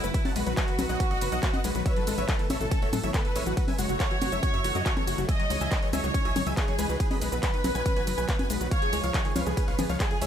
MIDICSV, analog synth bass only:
0, 0, Header, 1, 2, 480
1, 0, Start_track
1, 0, Tempo, 428571
1, 160, Time_signature, 4, 2, 24, 8
1, 11499, End_track
2, 0, Start_track
2, 0, Title_t, "Analog synth bass"
2, 0, Program_c, 0, 38
2, 41, Note_on_c, 0, 30, 81
2, 125, Note_off_c, 0, 30, 0
2, 399, Note_on_c, 0, 35, 97
2, 484, Note_off_c, 0, 35, 0
2, 522, Note_on_c, 0, 35, 86
2, 605, Note_off_c, 0, 35, 0
2, 879, Note_on_c, 0, 35, 100
2, 964, Note_off_c, 0, 35, 0
2, 1000, Note_on_c, 0, 35, 81
2, 1085, Note_off_c, 0, 35, 0
2, 1240, Note_on_c, 0, 33, 78
2, 1324, Note_off_c, 0, 33, 0
2, 1359, Note_on_c, 0, 30, 98
2, 1444, Note_off_c, 0, 30, 0
2, 1479, Note_on_c, 0, 35, 84
2, 1564, Note_off_c, 0, 35, 0
2, 1839, Note_on_c, 0, 35, 95
2, 1924, Note_off_c, 0, 35, 0
2, 1960, Note_on_c, 0, 35, 79
2, 2044, Note_off_c, 0, 35, 0
2, 2320, Note_on_c, 0, 33, 96
2, 2405, Note_off_c, 0, 33, 0
2, 2440, Note_on_c, 0, 33, 87
2, 2525, Note_off_c, 0, 33, 0
2, 2799, Note_on_c, 0, 33, 105
2, 2884, Note_off_c, 0, 33, 0
2, 2918, Note_on_c, 0, 33, 82
2, 3004, Note_off_c, 0, 33, 0
2, 3159, Note_on_c, 0, 28, 77
2, 3244, Note_off_c, 0, 28, 0
2, 3278, Note_on_c, 0, 45, 93
2, 3364, Note_off_c, 0, 45, 0
2, 3400, Note_on_c, 0, 33, 83
2, 3484, Note_off_c, 0, 33, 0
2, 3758, Note_on_c, 0, 33, 97
2, 3844, Note_off_c, 0, 33, 0
2, 3878, Note_on_c, 0, 33, 80
2, 3964, Note_off_c, 0, 33, 0
2, 4240, Note_on_c, 0, 30, 97
2, 4325, Note_off_c, 0, 30, 0
2, 4360, Note_on_c, 0, 30, 82
2, 4445, Note_off_c, 0, 30, 0
2, 4719, Note_on_c, 0, 30, 99
2, 4804, Note_off_c, 0, 30, 0
2, 4840, Note_on_c, 0, 30, 79
2, 4924, Note_off_c, 0, 30, 0
2, 5080, Note_on_c, 0, 42, 80
2, 5165, Note_off_c, 0, 42, 0
2, 5200, Note_on_c, 0, 30, 91
2, 5285, Note_off_c, 0, 30, 0
2, 5321, Note_on_c, 0, 42, 78
2, 5405, Note_off_c, 0, 42, 0
2, 5681, Note_on_c, 0, 30, 93
2, 5765, Note_off_c, 0, 30, 0
2, 5803, Note_on_c, 0, 30, 82
2, 5886, Note_off_c, 0, 30, 0
2, 6162, Note_on_c, 0, 37, 98
2, 6246, Note_off_c, 0, 37, 0
2, 6282, Note_on_c, 0, 37, 83
2, 6366, Note_off_c, 0, 37, 0
2, 6640, Note_on_c, 0, 37, 99
2, 6725, Note_off_c, 0, 37, 0
2, 6760, Note_on_c, 0, 37, 77
2, 6845, Note_off_c, 0, 37, 0
2, 6999, Note_on_c, 0, 35, 82
2, 7084, Note_off_c, 0, 35, 0
2, 7119, Note_on_c, 0, 32, 91
2, 7204, Note_off_c, 0, 32, 0
2, 7240, Note_on_c, 0, 37, 86
2, 7325, Note_off_c, 0, 37, 0
2, 7598, Note_on_c, 0, 37, 98
2, 7684, Note_off_c, 0, 37, 0
2, 7720, Note_on_c, 0, 37, 77
2, 7805, Note_off_c, 0, 37, 0
2, 8080, Note_on_c, 0, 35, 98
2, 8165, Note_off_c, 0, 35, 0
2, 8199, Note_on_c, 0, 35, 88
2, 8284, Note_off_c, 0, 35, 0
2, 8560, Note_on_c, 0, 35, 101
2, 8645, Note_off_c, 0, 35, 0
2, 8681, Note_on_c, 0, 35, 80
2, 8765, Note_off_c, 0, 35, 0
2, 8919, Note_on_c, 0, 33, 79
2, 9004, Note_off_c, 0, 33, 0
2, 9039, Note_on_c, 0, 30, 92
2, 9124, Note_off_c, 0, 30, 0
2, 9160, Note_on_c, 0, 35, 78
2, 9245, Note_off_c, 0, 35, 0
2, 9519, Note_on_c, 0, 35, 96
2, 9604, Note_off_c, 0, 35, 0
2, 9640, Note_on_c, 0, 35, 76
2, 9725, Note_off_c, 0, 35, 0
2, 10000, Note_on_c, 0, 37, 97
2, 10085, Note_off_c, 0, 37, 0
2, 10121, Note_on_c, 0, 37, 85
2, 10205, Note_off_c, 0, 37, 0
2, 10480, Note_on_c, 0, 37, 102
2, 10565, Note_off_c, 0, 37, 0
2, 10599, Note_on_c, 0, 37, 83
2, 10684, Note_off_c, 0, 37, 0
2, 10840, Note_on_c, 0, 35, 80
2, 10925, Note_off_c, 0, 35, 0
2, 10961, Note_on_c, 0, 32, 93
2, 11045, Note_off_c, 0, 32, 0
2, 11081, Note_on_c, 0, 37, 87
2, 11165, Note_off_c, 0, 37, 0
2, 11441, Note_on_c, 0, 37, 98
2, 11499, Note_off_c, 0, 37, 0
2, 11499, End_track
0, 0, End_of_file